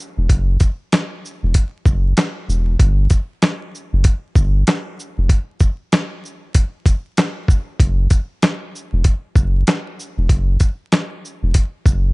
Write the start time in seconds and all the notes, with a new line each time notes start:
0.00 shaker
0.17 E1
0.29 F#1, kick, closed hi-hat
0.60 kick, closed hi-hat, shaker
0.92 snare, closed hi-hat
1.25 shaker
1.43 E1
1.54 kick, closed hi-hat
1.86 F#1, kick, shaker
2.17 snare, closed hi-hat
2.48 E1, shaker
2.79 G1, kick, closed hi-hat
3.10 kick, closed hi-hat, shaker
3.42 snare, closed hi-hat
3.75 shaker
3.93 F#1
4.04 kick, closed hi-hat
4.35 G1, kick, shaker
4.67 snare, closed hi-hat
5.00 shaker
5.18 F1
5.29 kick, closed hi-hat
5.60 kick, shaker
5.92 snare, closed hi-hat
6.25 shaker
6.54 kick, closed hi-hat
6.86 kick, closed hi-hat, shaker
7.17 snare, closed hi-hat
7.48 kick, shaker
7.80 F#1, kick, closed hi-hat
8.10 kick, closed hi-hat, shaker
8.42 snare, closed hi-hat
8.76 shaker
8.93 E1
9.04 kick, closed hi-hat
9.36 F#1, kick, shaker
9.67 snare, closed hi-hat
10.00 shaker
10.18 E1
10.29 F#1, kick, closed hi-hat
10.60 kick, closed hi-hat, shaker
10.92 snare, closed hi-hat
11.25 shaker
11.43 E1
11.54 kick, closed hi-hat
11.86 F#1, kick, shaker